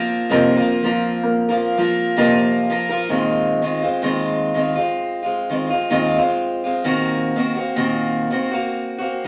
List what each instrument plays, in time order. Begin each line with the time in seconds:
Already playing: upright piano F3 C4, steel-string acoustic guitar F3 A#3 F4 A#4
0.29 steel-string acoustic guitar F2 C3 F3 A#3 F4 A#4, upright piano F3 A#3 C4
0.56 steel-string acoustic guitar F3 A#3 F4 A#4
0.83 steel-string acoustic guitar F3 A#3 F4 A#4, upright piano F3
1.23 upright piano A#3
1.49 steel-string acoustic guitar F3 A#3 F4 A#4
1.77 steel-string acoustic guitar F3 A#3 F4 A#4, upright piano F3
2.17 steel-string acoustic guitar F2 C3 F3 A#3 F4 A#4, upright piano A#3
2.70 steel-string acoustic guitar F3 A#3 F4 A#4
2.89 steel-string acoustic guitar F3 A#3 F4 A#4
3.09 steel-string acoustic guitar A#2 D#3 G#3 C4 F4
3.62 steel-string acoustic guitar D#3 G#3 C4 F4
3.82 steel-string acoustic guitar G#3 C4 F4
4.02 steel-string acoustic guitar A#2 D#3 G#3 C4 F4
4.54 steel-string acoustic guitar D#3 G#3 C4 F4
4.76 steel-string acoustic guitar G#3 C4 F4
5.23 steel-string acoustic guitar G#3 C4 F4
5.49 steel-string acoustic guitar D#3 G#3 C4 F4
5.70 steel-string acoustic guitar G#3 C4 F4
5.90 steel-string acoustic guitar A#2 D#3 G#3 C4 F4
6.18 steel-string acoustic guitar G#3 C4 F4
6.64 steel-string acoustic guitar G#3 C4 F4
6.84 steel-string acoustic guitar A#2 D#3 A#3 C4 F#4
7.36 steel-string acoustic guitar D#3 A#3 C4 F#4
7.56 steel-string acoustic guitar A#3 C4 F#4
7.76 steel-string acoustic guitar A#2 D#3 A#3 C4 F#4
8.30 steel-string acoustic guitar D#3 A#3 C4 F#4
8.51 steel-string acoustic guitar A#3 C4 F#4
8.98 steel-string acoustic guitar A#3 C4 F#4
9.24 steel-string acoustic guitar D#3